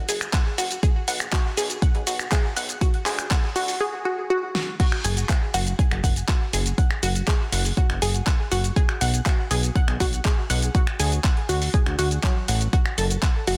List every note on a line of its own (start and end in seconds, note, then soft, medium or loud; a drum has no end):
0.09 0.28 F#1 medium
0.09 0.14 G#4 medium
0.09 open hi-hat loud
0.09 shaker medium
0.21 finger snap medium
0.21 closed hi-hat soft
0.21 shaker soft
0.33 0.42 F#5 medium
0.33 kick loud
0.33 clap loud
0.33 closed hi-hat medium
0.33 shaker soft
0.58 0.78 F#1 medium
0.58 0.63 F#4 loud
0.58 open hi-hat loud
0.58 shaker medium
0.71 closed hi-hat medium
0.71 shaker soft
0.83 0.88 G#4 medium
0.83 kick loud
0.83 closed hi-hat medium
0.83 shaker soft
1.08 1.28 B1 loud
1.08 1.16 F#5 medium
1.08 open hi-hat loud
1.08 shaker medium
1.20 finger snap medium
1.20 closed hi-hat medium
1.20 shaker soft
1.33 1.38 F#4 loud
1.33 finger snap medium
1.33 kick loud
1.33 clap loud
1.33 closed hi-hat medium
1.33 shaker soft
1.57 1.77 B1 loud
1.57 1.62 G#4 medium
1.57 open hi-hat loud
1.57 shaker medium
1.70 closed hi-hat medium
1.70 shaker soft
1.82 1.91 F#5 medium
1.82 kick loud
1.82 closed hi-hat medium
1.82 shaker soft
1.95 2.05 B1 medium
1.95 closed hi-hat soft
2.07 2.27 B1 medium
2.07 2.12 F#4 loud
2.07 open hi-hat loud
2.07 shaker medium
2.19 finger snap medium
2.19 closed hi-hat medium
2.19 shaker soft
2.32 2.37 G#4 medium
2.32 kick loud
2.32 clap loud
2.32 closed hi-hat medium
2.32 shaker soft
2.56 2.76 B1 medium
2.56 2.65 F#5 medium
2.56 open hi-hat loud
2.56 shaker medium
2.69 closed hi-hat medium
2.69 shaker soft
2.81 2.86 F#4 loud
2.81 kick loud
2.81 closed hi-hat medium
2.81 shaker soft
2.94 closed hi-hat soft
3.06 3.26 D2 loud
3.06 3.11 G#4 medium
3.06 clap medium
3.06 open hi-hat loud
3.06 shaker medium
3.19 finger snap medium
3.19 closed hi-hat medium
3.19 shaker soft
3.31 3.39 F#5 medium
3.31 finger snap medium
3.31 kick loud
3.31 clap loud
3.31 closed hi-hat medium
3.31 shaker soft
3.56 3.76 D2 loud
3.56 3.61 F#4 loud
3.56 open hi-hat loud
3.56 shaker medium
3.68 open hi-hat medium
3.68 shaker soft
3.81 3.86 G#4 medium
4.05 4.14 F#4 medium
4.30 4.39 F#4 medium
4.55 4.60 F#4 medium
4.55 snare medium
4.80 4.85 F#4 loud
4.80 4.85 F#5 medium
4.80 kick loud
4.80 closed hi-hat medium
4.80 crash loud
4.80 shaker soft
4.92 finger snap medium
5.04 5.24 F#1 loud
5.04 5.10 G#4 medium
5.04 5.10 G#5 medium
5.04 open hi-hat loud
5.04 shaker medium
5.17 closed hi-hat medium
5.17 shaker soft
5.29 5.38 F#5 medium
5.29 5.38 F#6 medium
5.29 kick loud
5.29 clap loud
5.29 closed hi-hat medium
5.29 shaker soft
5.54 5.74 F#1 loud
5.54 5.59 F#4 loud
5.54 5.59 F#5 medium
5.54 open hi-hat loud
5.54 shaker medium
5.67 closed hi-hat medium
5.67 shaker soft
5.79 5.84 G#4 medium
5.79 5.84 G#5 medium
5.79 kick loud
5.79 closed hi-hat medium
5.79 shaker soft
5.91 6.01 F#1 medium
5.91 finger snap medium
5.91 closed hi-hat soft
6.04 6.23 F#1 medium
6.04 6.12 F#5 medium
6.04 6.12 F#6 medium
6.04 kick medium
6.04 open hi-hat loud
6.04 shaker medium
6.16 closed hi-hat medium
6.16 shaker soft
6.28 6.34 F#4 loud
6.28 6.34 F#5 medium
6.28 kick loud
6.28 clap loud
6.28 closed hi-hat medium
6.28 shaker soft
6.53 6.73 F#1 medium
6.53 6.58 G#4 medium
6.53 6.58 G#5 medium
6.53 open hi-hat loud
6.53 shaker medium
6.66 closed hi-hat medium
6.66 shaker soft
6.78 6.87 F#5 medium
6.78 6.87 F#6 medium
6.78 kick loud
6.78 closed hi-hat medium
6.78 shaker soft
6.91 finger snap medium
7.03 7.23 F#1 loud
7.03 7.08 F#4 loud
7.03 7.08 F#5 medium
7.03 open hi-hat loud
7.03 shaker medium
7.15 closed hi-hat medium
7.15 shaker soft
7.28 7.33 G#4 medium
7.28 7.33 G#5 medium
7.28 kick loud
7.28 clap loud
7.28 closed hi-hat medium
7.28 shaker soft
7.52 7.72 F#1 loud
7.52 7.61 F#5 medium
7.52 7.61 F#6 medium
7.52 open hi-hat loud
7.52 shaker medium
7.65 open hi-hat medium
7.65 shaker soft
7.77 7.82 F#4 loud
7.77 7.82 F#5 medium
7.77 kick loud
7.77 closed hi-hat medium
7.77 shaker soft
7.90 8.00 F#1 medium
7.90 finger snap medium
7.90 closed hi-hat soft
8.02 8.22 F#1 medium
8.02 8.07 G#4 medium
8.02 8.07 G#5 medium
8.02 open hi-hat loud
8.02 shaker medium
8.15 closed hi-hat medium
8.15 shaker soft
8.27 8.35 F#5 medium
8.27 8.35 F#6 medium
8.27 kick loud
8.27 clap loud
8.27 closed hi-hat medium
8.27 shaker soft
8.52 8.71 F#1 medium
8.52 8.57 F#4 loud
8.52 8.57 F#5 medium
8.52 open hi-hat loud
8.52 shaker medium
8.64 closed hi-hat medium
8.64 shaker soft
8.76 8.81 G#4 medium
8.76 8.81 G#5 medium
8.76 kick loud
8.76 closed hi-hat medium
8.76 shaker soft
8.89 finger snap medium
9.01 9.21 B1 loud
9.01 9.10 F#5 medium
9.01 9.10 F#6 medium
9.01 open hi-hat loud
9.01 shaker medium
9.14 closed hi-hat medium
9.14 shaker soft
9.26 9.31 F#4 loud
9.26 9.31 F#5 medium
9.26 kick loud
9.26 clap loud
9.26 closed hi-hat medium
9.26 shaker soft
9.51 9.71 B1 loud
9.51 9.56 G#4 medium
9.51 9.56 G#5 medium
9.51 open hi-hat loud
9.51 shaker medium
9.63 closed hi-hat medium
9.63 shaker soft
9.76 9.84 F#5 medium
9.76 9.84 F#6 medium
9.76 kick loud
9.76 closed hi-hat medium
9.76 shaker soft
9.88 9.98 B1 medium
9.88 finger snap medium
9.88 closed hi-hat soft
10.00 10.20 B1 medium
10.00 10.05 F#4 loud
10.00 10.05 F#5 medium
10.00 kick medium
10.00 open hi-hat loud
10.00 shaker medium
10.13 closed hi-hat medium
10.13 shaker soft
10.25 10.30 G#4 medium
10.25 10.30 G#5 medium
10.25 kick loud
10.25 clap loud
10.25 closed hi-hat medium
10.25 shaker soft
10.50 10.70 B1 medium
10.50 10.58 F#5 medium
10.50 10.58 F#6 medium
10.50 open hi-hat loud
10.50 shaker medium
10.62 closed hi-hat medium
10.62 shaker soft
10.75 10.80 F#4 loud
10.75 10.80 F#5 medium
10.75 kick loud
10.75 closed hi-hat medium
10.75 shaker soft
10.87 finger snap medium
11.00 11.19 D2 loud
11.00 11.05 G#4 medium
11.00 11.05 G#5 medium
11.00 open hi-hat loud
11.00 shaker medium
11.12 closed hi-hat soft
11.12 shaker soft
11.24 11.33 F#5 medium
11.24 11.33 F#6 medium
11.24 kick loud
11.24 clap loud
11.24 closed hi-hat medium
11.24 shaker soft
11.37 closed hi-hat soft
11.49 11.69 D2 loud
11.49 11.54 F#4 loud
11.49 11.54 F#5 medium
11.49 open hi-hat loud
11.49 shaker medium
11.62 open hi-hat medium
11.62 shaker soft
11.74 11.79 G#4 medium
11.74 11.79 G#5 medium
11.74 kick loud
11.74 closed hi-hat medium
11.74 shaker soft
11.86 11.96 D2 medium
11.86 finger snap medium
11.86 closed hi-hat soft
11.99 12.19 D2 loud
11.99 12.07 F#4 loud
11.99 12.07 F#5 medium
11.99 open hi-hat loud
11.99 shaker medium
12.11 closed hi-hat soft
12.11 shaker soft
12.23 12.32 F#3 loud
12.23 12.32 F#4 medium
12.23 kick loud
12.23 clap loud
12.23 closed hi-hat medium
12.23 shaker soft
12.48 12.68 A1 loud
12.48 12.60 F#5 medium
12.48 12.60 F#6 medium
12.48 open hi-hat loud
12.48 shaker medium
12.61 closed hi-hat soft
12.61 shaker soft
12.73 12.78 F#4 loud
12.73 12.78 F#5 medium
12.73 kick loud
12.73 closed hi-hat medium
12.73 shaker soft
12.86 finger snap medium
12.98 13.18 F#1 loud
12.98 13.03 A4 medium
12.98 13.03 A5 medium
12.98 open hi-hat loud
12.98 shaker medium
13.10 closed hi-hat medium
13.10 shaker soft
13.23 13.31 F#5 medium
13.23 13.31 F#6 medium
13.23 kick loud
13.23 clap loud
13.23 closed hi-hat medium
13.23 shaker soft
13.47 13.57 F#1 loud
13.47 13.53 F#4 loud
13.47 13.53 F#5 medium
13.47 open hi-hat loud
13.47 shaker medium